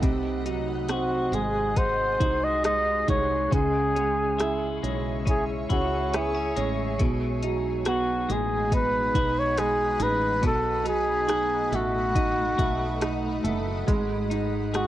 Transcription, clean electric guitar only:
Already playing: A3 D#4 F#4
0.02 C3
0.46 D#4
0.89 F#4
1.33 G#3
1.76 D#4
2.20 F#4
2.64 D#4
3.08 G#3
3.51 C#3
3.96 C#4
4.38 E4
4.83 G#3
5.26 C#4
5.69 E4
6.13 B3
6.35 C#4
6.56 G#3
6.99 B2
7.43 D#4
7.86 F#4
8.29 G#3
8.72 D#4
9.15 F#4
9.58 D#4
10.00 G#3
10.43 B2
10.85 D#4
11.28 F#4
11.72 A3
12.15 D#4
12.58 F#4
13.01 D#4
13.44 A3
13.87 G#2
14.30 D#4
14.73 G#4

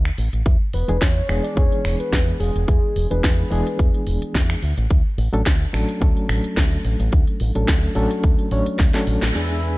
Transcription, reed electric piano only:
0.88 E3 G#3 B3 D4 G#4
1.29 E3 G#3 B3 D4 G#4
1.56 E3 G#3 B3 D4 G#4
3.11 E3 G#3 B3 D4 G#4
3.50 E3 G#3 B3 D4 G#4
5.33 F#3 A3 C#4 D4 A4
5.73 F#3 A3 C#4 D4 A4
6.01 F#3 A3 C#4 D4 A4
7.55 F#3 A3 C#4 D4 A4
7.95 F#3 A3 C#4 D4 A4
8.51 F#3 A3 C#4 D4 C#5
8.94 F#3 A3 C#4 D4 A4
9.33 E3 G#3 B3 D4 G#4

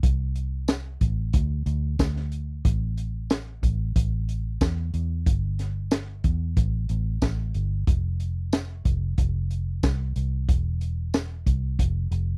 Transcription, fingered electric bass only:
0.03 C2
1.01 A1
1.34 D2
1.66 D2
1.99 D2
2.65 A1
3.63 A1
3.96 A1
4.61 E2
4.94 E2
5.27 G1
6.24 E2
6.57 A1
6.90 A1
7.22 A1
7.55 G1
7.88 F1
8.85 F1
9.18 F1
9.83 C2
10.16 C2
10.49 E1
11.46 C2
11.79 F1
12.11 F1

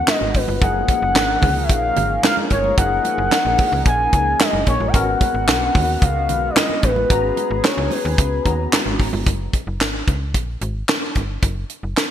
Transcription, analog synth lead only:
0.08 D#5
0.35 B4
0.62 F#5
1.63 E5
1.70 F5
2.24 F5
2.51 C#5
2.78 F#5
3.86 G#5
4.41 D#5
4.68 C#5
4.88 G#5
4.95 F#5
6.03 F5
6.50 D5
6.57 D#5
6.84 B4
7.65 C#5
7.92 B4

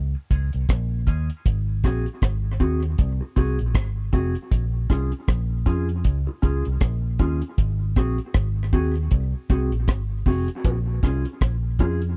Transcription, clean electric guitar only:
0.15 muted clean electric guitar stroke
0.31 C#4 F4 G#4
1.07 C#4 F4 G#4
1.84 C4 F#4 G#4
2.60 C4 F#4 G#4
3.21 muted clean electric guitar stroke
3.36 C4 F#4 G#4
4.13 C4 F#4 G#4
4.90 C#4 F4 G#4
5.66 C#4 F4 G#4
6.27 muted clean electric guitar stroke
6.42 C#4 F4 G#4
7.20 C#4 F4 G#4
7.96 C4 F#4 G#4
8.73 C4 F#4 G#4
9.50 C4 F#4 G#4
10.26 C4 F#4 G#4
11.03 C#4 F4 G#4
11.80 C#4 F4 G#4

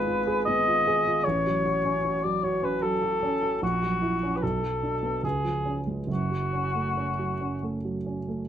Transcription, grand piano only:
Already playing: G#1 G#3 B3 F4
0.07 F4
0.27 G#4
0.47 B3
0.68 F4
0.87 G#4
1.07 F4
1.27 A1
1.47 F#3
1.66 F#4
1.85 C#4
2.05 F#4
2.24 F#3
2.43 F#4
2.62 C#4
2.83 F#3
3.02 F#4
3.23 C#4
3.43 F#4
3.62 A#1
3.83 F#3
4.02 E4
4.23 C#4
4.43 B1
4.63 F#3
4.83 D4
5.03 B3
5.23 C#2
5.45 F3
5.65 C#4
5.87 G#3
6.07 F#1 F#2
6.31 F#3
6.53 C#4
6.75 A3
6.97 C#4
7.19 F#3
7.41 C#4
7.63 A3
7.85 F#3
8.06 C#4
8.28 A3

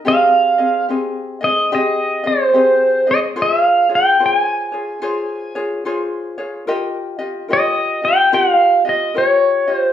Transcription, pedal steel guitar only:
0.08 F5
1.44 D#5
1.75 D#5
2.27 C5
3.11 D#5
3.42 E5
3.61 F5
3.95 G5
4.26 G5
4.37 G#5
7.53 D#5
8.05 G5
8.34 F#5
8.52 F5
8.89 D#5
9.18 C#5
9.75 C5

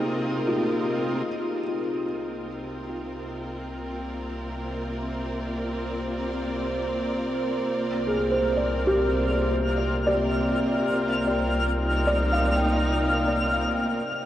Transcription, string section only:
Already playing: C3 A#3 C4 F4 A#4 D#5
3.82 D5
11.78 D#4

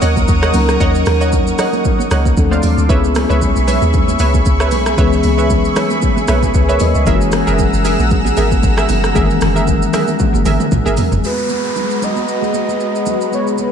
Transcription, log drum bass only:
0.02 D#2
0.29 D#2
0.54 C#2
0.80 D#2
1.06 D#2
2.11 C#2
2.37 D2
2.63 D#2
2.78 D2
2.89 C#2
3.30 C#2
3.56 B1
3.82 D#2
4.20 C#2
4.46 C#2
4.72 B1
4.98 C#2
5.24 C#2
6.28 B1
6.55 C#2
6.81 D#2
6.95 C#2
7.07 F#1
7.47 F#1
7.73 F#1
7.99 A#1
8.37 G#1
8.63 G#1
8.89 F#1
9.15 F#1
9.41 F#1
10.34 F#1
10.45 G#1
10.72 A#1
10.86 G#1
11.12 F#1

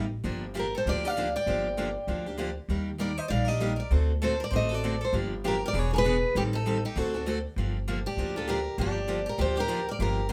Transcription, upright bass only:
Already playing: A1
0.24 G1
0.86 D2
1.46 G1
2.07 D2
2.69 D#2
3.30 A#1
3.90 D2
4.51 A1
5.13 G1
5.73 E1
6.35 A1
6.96 D2
7.56 G1
8.17 D2
8.78 G1
9.38 D2
9.99 G1

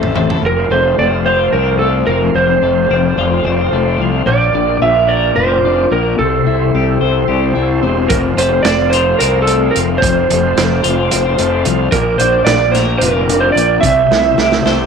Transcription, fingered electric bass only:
Already playing: A1
0.42 F1
0.70 F1
0.98 F1
1.53 C2
2.07 F1
2.34 F1
2.62 F1
2.90 F1
3.17 F1
3.44 F1
3.72 F1
3.98 C2
4.26 A#1
4.54 A#1
4.81 A#1
5.36 F1
5.91 A#1
6.19 C2
6.46 C2
6.74 C2
7.01 C2
7.28 C2
7.56 C2
7.83 E1
8.11 F1
8.37 F1
8.65 F1
9.21 C2
9.77 F1
10.02 F1
10.30 F1
10.58 F1
10.85 F1
11.13 F1
11.39 F1
11.66 C2
11.92 A#1
12.20 A#1
12.46 A#1
13.01 F1
13.56 A#1
13.83 C2
14.10 C2
14.37 C2
14.65 C2

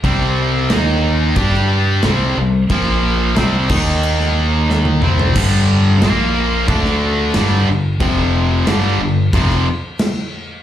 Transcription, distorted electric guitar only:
0.04 C3 G3 C4
0.70 D#3 A#3 D#4
1.36 G3 D4 G4
2.04 C3 G3 C4
2.38 C3 G3
2.70 A#2 F3 A#3
3.36 C3 G3 C4
3.70 D#3 A#3 D#4
5.02 C3 G3 C4
5.35 G2 D3 G3
6.01 A#2 F3 A#3
6.67 D3 A3 D4
7.35 G2 D3 G3
7.68 G2 D3
8.00 F2 C3 F3
8.67 G2 D3 G3
9.01 G2 D3
9.34 F2 C3 F3

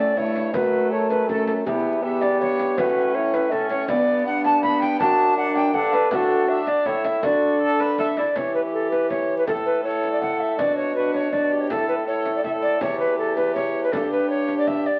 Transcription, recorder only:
0.00 D5
0.17 C#5
0.54 B4
0.91 C#5
1.10 B4
1.29 A4
1.47 A4
1.66 G4
2.03 E5
2.21 D5
2.40 C#5
2.78 B4
3.15 C#5
3.34 B4
3.52 A4
3.70 C#5
3.89 D5
4.26 F#5
4.45 A5
4.63 B5
4.81 G5
5.01 A5
5.37 F#5
5.56 G5
5.74 F#5
5.93 B4
6.11 B4
6.15 A4
6.49 E5
6.68 D5
6.86 C#5
7.05 E5
7.24 D5
7.99 E5
8.18 D5
8.37 C#5
8.55 B4
8.73 A4
8.91 B4
9.10 C#5
9.38 B4
9.47 A4
9.66 B4
9.84 C#5
10.12 D5
10.21 F#5
10.40 E5
10.58 D5
10.76 C#5
10.95 B4
11.14 C#5
11.33 D5
11.61 C#5
11.70 A4
11.88 B4
12.07 C#5
12.36 D5
12.44 E5
12.62 D5
12.81 C#5
13.00 B4
13.18 A4
13.36 B4
13.55 C#5
13.84 B4
13.92 A4
14.12 B4
14.30 C#5
14.59 D5
14.67 E5
14.86 D5

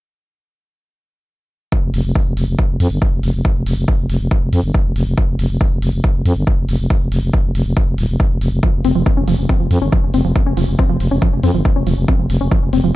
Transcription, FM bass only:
1.83 F1
1.94 F1
2.05 F1
2.26 F1
2.37 F1
2.48 F1
2.69 F1
2.80 F2
2.91 G1
3.13 F1
3.23 F1
3.34 F1
3.56 F1
3.67 F1
3.77 F1
3.99 F1
4.10 F1
4.20 F1
4.42 F1
4.53 F2
4.64 G1
4.85 F1
4.96 F1
5.07 F1
5.28 F1
5.39 F1
5.50 F1
5.72 F1
5.82 F1
5.93 F1
6.15 F1
6.25 F2
6.36 G1
6.58 F1
6.69 F1
6.79 F1
7.01 F1
7.12 F1
7.23 F1
7.44 F1
7.55 F1
7.66 F1
7.87 F1
7.98 D#1
8.09 F1
8.31 F1
8.41 F1
8.52 F1
8.74 F1
8.84 F1
8.95 F1
9.17 F1
9.28 F1
9.39 F1
9.60 F1
9.71 F2
9.82 G1
10.03 F1
10.14 F1
10.25 F1
10.46 F1
10.57 F1
10.68 F1
10.90 F1
11.00 F1
11.11 F1
11.33 F1
11.44 F2
11.54 G1
11.76 F1
11.87 F1
11.98 F1
12.19 F1
12.30 F1
12.41 F1
12.62 F1
12.73 F1
12.84 F1

